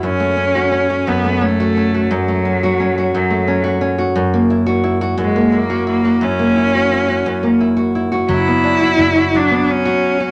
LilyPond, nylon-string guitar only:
\new Staff \with { instrumentName = "Nylon-string guitar" } { \time 6/8 \key fis \minor \tempo 4. = 58 fis,16 a16 cis'16 fis'16 cis'16 fis'16 fis,16 a16 cis'16 fis'16 cis'16 fis'16 | fis,16 a16 cis'16 fis'16 cis'16 fis'16 fis,16 a16 cis'16 fis'16 cis'16 fis'16 | fis,16 ais16 e'16 fis'16 e'16 fis'16 fis,16 ais16 e'16 fis'16 e'16 fis'16 | fis,16 ais16 e'16 fis'16 e'16 fis'16 fis,16 ais16 e'16 fis'16 e'16 fis'16 |
fis16 b16 d'16 fis'16 d'16 fis'16 fis16 b8 fis'8 fis'16 | }